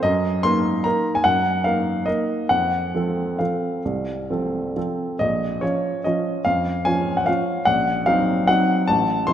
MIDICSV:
0, 0, Header, 1, 2, 480
1, 0, Start_track
1, 0, Key_signature, -5, "minor"
1, 0, Tempo, 405132
1, 51, Time_signature, 3, 2, 24, 8
1, 2454, Tempo, 448096
1, 5814, Tempo, 424028
1, 6774, Tempo, 402414
1, 10682, End_track
2, 0, Start_track
2, 0, Title_t, "Upright piano"
2, 0, Program_c, 0, 0
2, 31, Note_on_c, 0, 75, 87
2, 50, Note_on_c, 0, 42, 59
2, 272, Control_c, 0, 64, 127
2, 509, Note_off_c, 0, 42, 0
2, 512, Note_on_c, 0, 84, 99
2, 514, Note_off_c, 0, 75, 0
2, 523, Note_on_c, 0, 58, 45
2, 531, Note_on_c, 0, 63, 49
2, 533, Note_on_c, 0, 70, 51
2, 964, Note_off_c, 0, 58, 0
2, 968, Note_off_c, 0, 63, 0
2, 969, Note_off_c, 0, 70, 0
2, 995, Note_on_c, 0, 82, 75
2, 1006, Note_off_c, 0, 84, 0
2, 1008, Note_on_c, 0, 58, 41
2, 1015, Note_on_c, 0, 63, 45
2, 1020, Note_on_c, 0, 70, 48
2, 1022, Control_c, 0, 64, 0
2, 1362, Note_off_c, 0, 82, 0
2, 1362, Note_on_c, 0, 80, 76
2, 1434, Note_off_c, 0, 58, 0
2, 1438, Note_off_c, 0, 63, 0
2, 1441, Note_off_c, 0, 70, 0
2, 1468, Note_on_c, 0, 78, 85
2, 1480, Note_off_c, 0, 80, 0
2, 1485, Note_on_c, 0, 42, 52
2, 1681, Control_c, 0, 64, 127
2, 1940, Note_off_c, 0, 42, 0
2, 1946, Note_off_c, 0, 78, 0
2, 1946, Note_on_c, 0, 77, 76
2, 1960, Note_on_c, 0, 58, 40
2, 1961, Note_on_c, 0, 63, 40
2, 1970, Note_on_c, 0, 70, 45
2, 2410, Note_off_c, 0, 58, 0
2, 2411, Note_off_c, 0, 63, 0
2, 2415, Note_off_c, 0, 70, 0
2, 2436, Note_on_c, 0, 75, 69
2, 2451, Note_off_c, 0, 77, 0
2, 2453, Note_on_c, 0, 58, 37
2, 2457, Note_on_c, 0, 63, 36
2, 2459, Note_on_c, 0, 70, 41
2, 2465, Control_c, 0, 64, 0
2, 2872, Note_off_c, 0, 58, 0
2, 2874, Note_off_c, 0, 63, 0
2, 2875, Note_off_c, 0, 70, 0
2, 2905, Note_on_c, 0, 78, 79
2, 2907, Note_off_c, 0, 75, 0
2, 2919, Note_on_c, 0, 41, 44
2, 3108, Control_c, 0, 64, 127
2, 3375, Note_off_c, 0, 41, 0
2, 3391, Note_on_c, 0, 53, 38
2, 3397, Note_on_c, 0, 69, 39
2, 3398, Note_on_c, 0, 60, 38
2, 3836, Note_off_c, 0, 53, 0
2, 3839, Note_off_c, 0, 60, 0
2, 3839, Note_off_c, 0, 69, 0
2, 3864, Note_on_c, 0, 77, 52
2, 3872, Note_off_c, 0, 78, 0
2, 3876, Note_on_c, 0, 53, 32
2, 3882, Note_on_c, 0, 60, 35
2, 3883, Note_on_c, 0, 69, 34
2, 3890, Control_c, 0, 64, 0
2, 4322, Note_off_c, 0, 53, 0
2, 4325, Note_off_c, 0, 60, 0
2, 4325, Note_off_c, 0, 69, 0
2, 4362, Note_on_c, 0, 36, 44
2, 4552, Control_c, 0, 64, 127
2, 4833, Note_off_c, 0, 36, 0
2, 4845, Note_on_c, 0, 53, 33
2, 4846, Note_on_c, 0, 60, 34
2, 4852, Note_on_c, 0, 69, 38
2, 5291, Note_off_c, 0, 53, 0
2, 5291, Note_off_c, 0, 60, 0
2, 5294, Note_off_c, 0, 69, 0
2, 5328, Note_off_c, 0, 77, 0
2, 5335, Note_on_c, 0, 53, 34
2, 5339, Note_on_c, 0, 60, 32
2, 5344, Note_on_c, 0, 69, 36
2, 5353, Control_c, 0, 64, 0
2, 5770, Note_off_c, 0, 53, 0
2, 5772, Note_off_c, 0, 60, 0
2, 5774, Note_off_c, 0, 69, 0
2, 5798, Note_on_c, 0, 75, 77
2, 5812, Note_on_c, 0, 34, 48
2, 6050, Control_c, 0, 64, 127
2, 6271, Note_on_c, 0, 73, 62
2, 6273, Note_off_c, 0, 34, 0
2, 6279, Note_off_c, 0, 75, 0
2, 6285, Note_on_c, 0, 53, 38
2, 6290, Note_on_c, 0, 61, 37
2, 6292, Note_on_c, 0, 65, 41
2, 6295, Control_c, 0, 64, 0
2, 6727, Note_off_c, 0, 53, 0
2, 6729, Note_off_c, 0, 61, 0
2, 6730, Note_off_c, 0, 65, 0
2, 6760, Note_on_c, 0, 75, 68
2, 6765, Note_off_c, 0, 73, 0
2, 6777, Note_on_c, 0, 53, 39
2, 6783, Note_on_c, 0, 61, 37
2, 6789, Note_on_c, 0, 65, 38
2, 7213, Note_off_c, 0, 53, 0
2, 7217, Note_off_c, 0, 61, 0
2, 7219, Note_off_c, 0, 65, 0
2, 7239, Note_on_c, 0, 77, 80
2, 7252, Note_off_c, 0, 75, 0
2, 7257, Note_on_c, 0, 41, 49
2, 7451, Control_c, 0, 64, 127
2, 7721, Note_on_c, 0, 80, 85
2, 7722, Note_off_c, 0, 41, 0
2, 7727, Note_off_c, 0, 77, 0
2, 7734, Note_on_c, 0, 53, 41
2, 7744, Note_on_c, 0, 61, 39
2, 7747, Note_on_c, 0, 65, 44
2, 8097, Note_off_c, 0, 80, 0
2, 8102, Note_on_c, 0, 78, 62
2, 8178, Note_off_c, 0, 53, 0
2, 8183, Note_off_c, 0, 61, 0
2, 8184, Note_off_c, 0, 65, 0
2, 8209, Note_on_c, 0, 77, 73
2, 8223, Note_on_c, 0, 53, 40
2, 8226, Note_off_c, 0, 78, 0
2, 8230, Note_on_c, 0, 61, 38
2, 8236, Note_on_c, 0, 65, 43
2, 8244, Control_c, 0, 64, 0
2, 8653, Note_off_c, 0, 53, 0
2, 8656, Note_off_c, 0, 61, 0
2, 8660, Note_off_c, 0, 65, 0
2, 8681, Note_on_c, 0, 78, 85
2, 8693, Note_off_c, 0, 77, 0
2, 8694, Note_on_c, 0, 34, 52
2, 8912, Control_c, 0, 64, 127
2, 9160, Note_off_c, 0, 34, 0
2, 9165, Note_on_c, 0, 77, 86
2, 9168, Note_off_c, 0, 78, 0
2, 9179, Note_on_c, 0, 54, 43
2, 9188, Note_on_c, 0, 60, 44
2, 9190, Note_on_c, 0, 63, 50
2, 9620, Note_off_c, 0, 54, 0
2, 9624, Note_off_c, 0, 60, 0
2, 9625, Note_off_c, 0, 63, 0
2, 9659, Note_on_c, 0, 78, 87
2, 9661, Note_off_c, 0, 77, 0
2, 9675, Note_on_c, 0, 54, 42
2, 9676, Note_on_c, 0, 60, 42
2, 9680, Control_c, 0, 64, 0
2, 9683, Note_on_c, 0, 63, 47
2, 10103, Note_off_c, 0, 54, 0
2, 10104, Note_off_c, 0, 60, 0
2, 10108, Note_off_c, 0, 63, 0
2, 10137, Note_on_c, 0, 81, 90
2, 10143, Note_off_c, 0, 78, 0
2, 10155, Note_on_c, 0, 33, 57
2, 10342, Control_c, 0, 64, 127
2, 10603, Note_off_c, 0, 33, 0
2, 10605, Note_on_c, 0, 84, 94
2, 10608, Note_off_c, 0, 81, 0
2, 10619, Note_on_c, 0, 53, 43
2, 10620, Note_on_c, 0, 60, 45
2, 10630, Note_on_c, 0, 63, 51
2, 10682, Note_off_c, 0, 53, 0
2, 10682, Note_off_c, 0, 60, 0
2, 10682, Note_off_c, 0, 63, 0
2, 10682, Note_off_c, 0, 84, 0
2, 10682, End_track
0, 0, End_of_file